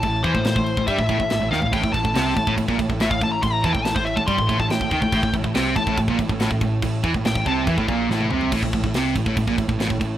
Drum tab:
CC |x-x-x-x-x-x-x---|x-x-x-x-x-x-x-x-|x-x-x-x-x-x-x-x-|x-x-x-x-x-x-x-x-|
SD |----o-------o-o-|----o-------o---|----o-------o---|----o-------o---|
T1 |----------------|----------------|----------------|----------------|
T2 |----------------|----------------|----------------|----------------|
FT |---------------o|----------------|----------------|----------------|
BD |o-oo-o-ooooo----|oooo--oooooo-oo-|o-oo-o-ooooo-ooo|oooo--oooooo-oo-|

CC |x-x-x-x-x-x-----|x-x-x-x-x-x-x-x-|
SD |----o-------o---|----o-------o---|
T1 |-------------o--|----------------|
T2 |--------------o-|----------------|
FT |---------------o|----------------|
BD |o-oo-oo-ooo-----|oooo--oooooo-oo-|